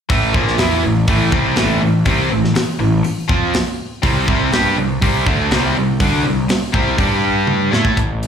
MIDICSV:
0, 0, Header, 1, 7, 480
1, 0, Start_track
1, 0, Key_signature, 0, "minor"
1, 0, Tempo, 492611
1, 93, Time_signature, 4, 2, 24, 8
1, 8059, End_track
2, 0, Start_track
2, 0, Title_t, "Overdriven electric guitar"
2, 0, Program_c, 0, 29
2, 89, Note_on_c, 0, 45, 90
2, 98, Note_on_c, 0, 52, 100
2, 102, Note_on_c, 0, 57, 104
2, 323, Note_off_c, 0, 45, 0
2, 328, Note_off_c, 0, 52, 0
2, 330, Note_off_c, 0, 57, 0
2, 330, Note_on_c, 0, 46, 73
2, 334, Note_on_c, 0, 53, 89
2, 344, Note_on_c, 0, 58, 93
2, 564, Note_off_c, 0, 46, 0
2, 566, Note_off_c, 0, 53, 0
2, 570, Note_on_c, 0, 52, 76
2, 571, Note_off_c, 0, 58, 0
2, 577, Note_on_c, 0, 59, 89
2, 581, Note_on_c, 0, 64, 98
2, 804, Note_off_c, 0, 52, 0
2, 807, Note_off_c, 0, 59, 0
2, 809, Note_off_c, 0, 64, 0
2, 816, Note_on_c, 0, 45, 59
2, 823, Note_on_c, 0, 52, 74
2, 1006, Note_off_c, 0, 45, 0
2, 1009, Note_off_c, 0, 52, 0
2, 1049, Note_on_c, 0, 45, 80
2, 1057, Note_on_c, 0, 52, 85
2, 1066, Note_on_c, 0, 57, 89
2, 1274, Note_off_c, 0, 45, 0
2, 1278, Note_on_c, 0, 48, 81
2, 1284, Note_off_c, 0, 52, 0
2, 1288, Note_off_c, 0, 57, 0
2, 1288, Note_on_c, 0, 55, 84
2, 1292, Note_on_c, 0, 60, 90
2, 1517, Note_off_c, 0, 48, 0
2, 1521, Note_on_c, 0, 45, 97
2, 1522, Note_off_c, 0, 55, 0
2, 1524, Note_off_c, 0, 60, 0
2, 1527, Note_on_c, 0, 52, 97
2, 1534, Note_on_c, 0, 57, 106
2, 1751, Note_off_c, 0, 45, 0
2, 1753, Note_off_c, 0, 52, 0
2, 1763, Note_on_c, 0, 45, 58
2, 1765, Note_off_c, 0, 57, 0
2, 1765, Note_on_c, 0, 52, 61
2, 1959, Note_off_c, 0, 45, 0
2, 1960, Note_off_c, 0, 52, 0
2, 2002, Note_on_c, 0, 48, 95
2, 2009, Note_on_c, 0, 55, 90
2, 2015, Note_on_c, 0, 60, 93
2, 2236, Note_off_c, 0, 48, 0
2, 2240, Note_on_c, 0, 45, 65
2, 2241, Note_off_c, 0, 55, 0
2, 2245, Note_on_c, 0, 52, 74
2, 2246, Note_off_c, 0, 60, 0
2, 2437, Note_off_c, 0, 45, 0
2, 2439, Note_off_c, 0, 52, 0
2, 2721, Note_on_c, 0, 45, 59
2, 2726, Note_on_c, 0, 52, 73
2, 2918, Note_off_c, 0, 45, 0
2, 2920, Note_off_c, 0, 52, 0
2, 3196, Note_on_c, 0, 53, 85
2, 3205, Note_on_c, 0, 60, 85
2, 3209, Note_on_c, 0, 65, 98
2, 3436, Note_off_c, 0, 53, 0
2, 3440, Note_off_c, 0, 60, 0
2, 3442, Note_off_c, 0, 65, 0
2, 3921, Note_on_c, 0, 48, 99
2, 3927, Note_on_c, 0, 55, 100
2, 3937, Note_on_c, 0, 60, 103
2, 4154, Note_off_c, 0, 48, 0
2, 4161, Note_off_c, 0, 55, 0
2, 4165, Note_on_c, 0, 48, 79
2, 4166, Note_off_c, 0, 60, 0
2, 4172, Note_on_c, 0, 55, 83
2, 4179, Note_on_c, 0, 60, 92
2, 4391, Note_off_c, 0, 55, 0
2, 4400, Note_off_c, 0, 48, 0
2, 4403, Note_on_c, 0, 55, 85
2, 4407, Note_off_c, 0, 60, 0
2, 4414, Note_on_c, 0, 62, 86
2, 4419, Note_on_c, 0, 67, 107
2, 4639, Note_off_c, 0, 55, 0
2, 4644, Note_off_c, 0, 62, 0
2, 4647, Note_off_c, 0, 67, 0
2, 4649, Note_on_c, 0, 48, 68
2, 4655, Note_on_c, 0, 55, 68
2, 4841, Note_off_c, 0, 48, 0
2, 4844, Note_off_c, 0, 55, 0
2, 4887, Note_on_c, 0, 48, 87
2, 4892, Note_on_c, 0, 55, 100
2, 4897, Note_on_c, 0, 60, 96
2, 5121, Note_off_c, 0, 48, 0
2, 5123, Note_off_c, 0, 55, 0
2, 5126, Note_off_c, 0, 60, 0
2, 5126, Note_on_c, 0, 50, 79
2, 5133, Note_on_c, 0, 57, 89
2, 5137, Note_on_c, 0, 62, 90
2, 5360, Note_off_c, 0, 50, 0
2, 5364, Note_off_c, 0, 57, 0
2, 5365, Note_on_c, 0, 48, 96
2, 5366, Note_off_c, 0, 62, 0
2, 5376, Note_on_c, 0, 55, 93
2, 5382, Note_on_c, 0, 60, 104
2, 5590, Note_off_c, 0, 48, 0
2, 5592, Note_off_c, 0, 55, 0
2, 5602, Note_on_c, 0, 48, 55
2, 5604, Note_on_c, 0, 55, 68
2, 5608, Note_off_c, 0, 60, 0
2, 5798, Note_off_c, 0, 48, 0
2, 5798, Note_off_c, 0, 55, 0
2, 5846, Note_on_c, 0, 50, 90
2, 5849, Note_on_c, 0, 57, 96
2, 5854, Note_on_c, 0, 62, 106
2, 6080, Note_off_c, 0, 50, 0
2, 6082, Note_off_c, 0, 57, 0
2, 6085, Note_off_c, 0, 62, 0
2, 6091, Note_on_c, 0, 48, 61
2, 6098, Note_on_c, 0, 55, 69
2, 6282, Note_off_c, 0, 48, 0
2, 6286, Note_off_c, 0, 55, 0
2, 6554, Note_on_c, 0, 48, 84
2, 6564, Note_on_c, 0, 55, 90
2, 6572, Note_on_c, 0, 60, 101
2, 6782, Note_off_c, 0, 55, 0
2, 6794, Note_on_c, 0, 55, 87
2, 6795, Note_off_c, 0, 48, 0
2, 6798, Note_off_c, 0, 60, 0
2, 6802, Note_on_c, 0, 62, 86
2, 6806, Note_on_c, 0, 67, 95
2, 7512, Note_off_c, 0, 55, 0
2, 7516, Note_on_c, 0, 57, 82
2, 7520, Note_off_c, 0, 62, 0
2, 7522, Note_off_c, 0, 67, 0
2, 7525, Note_on_c, 0, 64, 88
2, 7530, Note_on_c, 0, 69, 89
2, 7757, Note_off_c, 0, 57, 0
2, 7761, Note_off_c, 0, 64, 0
2, 7764, Note_off_c, 0, 69, 0
2, 8059, End_track
3, 0, Start_track
3, 0, Title_t, "Picked electric bass"
3, 0, Program_c, 1, 34
3, 97, Note_on_c, 1, 33, 91
3, 318, Note_off_c, 1, 33, 0
3, 335, Note_on_c, 1, 34, 90
3, 556, Note_off_c, 1, 34, 0
3, 579, Note_on_c, 1, 40, 87
3, 799, Note_off_c, 1, 40, 0
3, 818, Note_on_c, 1, 33, 75
3, 1038, Note_off_c, 1, 33, 0
3, 1051, Note_on_c, 1, 33, 85
3, 1275, Note_off_c, 1, 33, 0
3, 1287, Note_on_c, 1, 36, 86
3, 1512, Note_off_c, 1, 36, 0
3, 1535, Note_on_c, 1, 33, 90
3, 1756, Note_off_c, 1, 33, 0
3, 1773, Note_on_c, 1, 33, 74
3, 1995, Note_off_c, 1, 33, 0
3, 2008, Note_on_c, 1, 36, 90
3, 2232, Note_off_c, 1, 36, 0
3, 2255, Note_on_c, 1, 33, 72
3, 2476, Note_off_c, 1, 33, 0
3, 2731, Note_on_c, 1, 33, 76
3, 2953, Note_off_c, 1, 33, 0
3, 3209, Note_on_c, 1, 41, 89
3, 3433, Note_off_c, 1, 41, 0
3, 3934, Note_on_c, 1, 36, 89
3, 4155, Note_off_c, 1, 36, 0
3, 4171, Note_on_c, 1, 36, 87
3, 4393, Note_off_c, 1, 36, 0
3, 4416, Note_on_c, 1, 43, 88
3, 4636, Note_off_c, 1, 43, 0
3, 4655, Note_on_c, 1, 36, 78
3, 4875, Note_off_c, 1, 36, 0
3, 4894, Note_on_c, 1, 36, 91
3, 5115, Note_off_c, 1, 36, 0
3, 5133, Note_on_c, 1, 38, 89
3, 5354, Note_off_c, 1, 38, 0
3, 5374, Note_on_c, 1, 36, 95
3, 5595, Note_off_c, 1, 36, 0
3, 5613, Note_on_c, 1, 36, 76
3, 5834, Note_off_c, 1, 36, 0
3, 5848, Note_on_c, 1, 38, 101
3, 6071, Note_off_c, 1, 38, 0
3, 6086, Note_on_c, 1, 36, 74
3, 6311, Note_off_c, 1, 36, 0
3, 6568, Note_on_c, 1, 36, 93
3, 6792, Note_off_c, 1, 36, 0
3, 6805, Note_on_c, 1, 43, 88
3, 7489, Note_off_c, 1, 43, 0
3, 7529, Note_on_c, 1, 45, 94
3, 7754, Note_off_c, 1, 45, 0
3, 7769, Note_on_c, 1, 33, 84
3, 8059, Note_off_c, 1, 33, 0
3, 8059, End_track
4, 0, Start_track
4, 0, Title_t, "Muted distorted electric guitar strokes"
4, 2492, Note_on_c, 9, 29, 56
4, 2590, Note_off_c, 9, 29, 0
4, 2975, Note_on_c, 9, 29, 51
4, 3072, Note_off_c, 9, 29, 0
4, 6339, Note_on_c, 9, 29, 52
4, 6436, Note_off_c, 9, 29, 0
4, 8059, End_track
5, 0, Start_track
5, 0, Title_t, "Muted overdriven electric guitar strokes"
5, 2486, Note_on_c, 9, 29, 55
5, 2583, Note_off_c, 9, 29, 0
5, 2971, Note_on_c, 9, 29, 53
5, 3068, Note_off_c, 9, 29, 0
5, 6325, Note_on_c, 9, 29, 54
5, 6422, Note_off_c, 9, 29, 0
5, 8059, End_track
6, 0, Start_track
6, 0, Title_t, "Muted picked electric bass strokes"
6, 2497, Note_on_c, 9, 29, 35
6, 2595, Note_off_c, 9, 29, 0
6, 2971, Note_on_c, 9, 29, 36
6, 3068, Note_off_c, 9, 29, 0
6, 6333, Note_on_c, 9, 29, 41
6, 6430, Note_off_c, 9, 29, 0
6, 8059, End_track
7, 0, Start_track
7, 0, Title_t, "Drums"
7, 94, Note_on_c, 9, 46, 58
7, 96, Note_on_c, 9, 36, 104
7, 191, Note_off_c, 9, 46, 0
7, 193, Note_off_c, 9, 36, 0
7, 335, Note_on_c, 9, 36, 106
7, 432, Note_off_c, 9, 36, 0
7, 465, Note_on_c, 9, 38, 31
7, 562, Note_off_c, 9, 38, 0
7, 566, Note_on_c, 9, 46, 61
7, 577, Note_on_c, 9, 38, 103
7, 664, Note_off_c, 9, 46, 0
7, 674, Note_off_c, 9, 38, 0
7, 1048, Note_on_c, 9, 46, 60
7, 1051, Note_on_c, 9, 36, 101
7, 1146, Note_off_c, 9, 46, 0
7, 1149, Note_off_c, 9, 36, 0
7, 1289, Note_on_c, 9, 36, 104
7, 1387, Note_off_c, 9, 36, 0
7, 1519, Note_on_c, 9, 46, 58
7, 1530, Note_on_c, 9, 38, 108
7, 1617, Note_off_c, 9, 46, 0
7, 1627, Note_off_c, 9, 38, 0
7, 2001, Note_on_c, 9, 46, 58
7, 2006, Note_on_c, 9, 36, 97
7, 2098, Note_off_c, 9, 46, 0
7, 2103, Note_off_c, 9, 36, 0
7, 2382, Note_on_c, 9, 38, 30
7, 2480, Note_off_c, 9, 38, 0
7, 2486, Note_on_c, 9, 46, 57
7, 2497, Note_on_c, 9, 38, 112
7, 2584, Note_off_c, 9, 46, 0
7, 2595, Note_off_c, 9, 38, 0
7, 2964, Note_on_c, 9, 46, 54
7, 3062, Note_off_c, 9, 46, 0
7, 3209, Note_on_c, 9, 36, 106
7, 3307, Note_off_c, 9, 36, 0
7, 3446, Note_on_c, 9, 46, 50
7, 3457, Note_on_c, 9, 38, 105
7, 3544, Note_off_c, 9, 46, 0
7, 3555, Note_off_c, 9, 38, 0
7, 3928, Note_on_c, 9, 46, 58
7, 3930, Note_on_c, 9, 36, 101
7, 4025, Note_off_c, 9, 46, 0
7, 4027, Note_off_c, 9, 36, 0
7, 4170, Note_on_c, 9, 36, 105
7, 4268, Note_off_c, 9, 36, 0
7, 4409, Note_on_c, 9, 46, 58
7, 4420, Note_on_c, 9, 38, 105
7, 4507, Note_off_c, 9, 46, 0
7, 4517, Note_off_c, 9, 38, 0
7, 4893, Note_on_c, 9, 36, 99
7, 4896, Note_on_c, 9, 46, 59
7, 4991, Note_off_c, 9, 36, 0
7, 4994, Note_off_c, 9, 46, 0
7, 5130, Note_on_c, 9, 36, 102
7, 5228, Note_off_c, 9, 36, 0
7, 5368, Note_on_c, 9, 46, 58
7, 5379, Note_on_c, 9, 38, 106
7, 5466, Note_off_c, 9, 46, 0
7, 5476, Note_off_c, 9, 38, 0
7, 5848, Note_on_c, 9, 36, 98
7, 5850, Note_on_c, 9, 46, 64
7, 5945, Note_off_c, 9, 36, 0
7, 5948, Note_off_c, 9, 46, 0
7, 6324, Note_on_c, 9, 46, 57
7, 6334, Note_on_c, 9, 38, 110
7, 6421, Note_off_c, 9, 46, 0
7, 6432, Note_off_c, 9, 38, 0
7, 6566, Note_on_c, 9, 36, 99
7, 6664, Note_off_c, 9, 36, 0
7, 6804, Note_on_c, 9, 46, 54
7, 6806, Note_on_c, 9, 36, 101
7, 6901, Note_off_c, 9, 46, 0
7, 6903, Note_off_c, 9, 36, 0
7, 7282, Note_on_c, 9, 48, 62
7, 7379, Note_off_c, 9, 48, 0
7, 7536, Note_on_c, 9, 38, 83
7, 7634, Note_off_c, 9, 38, 0
7, 7646, Note_on_c, 9, 36, 80
7, 7744, Note_off_c, 9, 36, 0
7, 7768, Note_on_c, 9, 36, 92
7, 7771, Note_on_c, 9, 42, 69
7, 7866, Note_off_c, 9, 36, 0
7, 7868, Note_off_c, 9, 42, 0
7, 8017, Note_on_c, 9, 42, 53
7, 8059, Note_off_c, 9, 42, 0
7, 8059, End_track
0, 0, End_of_file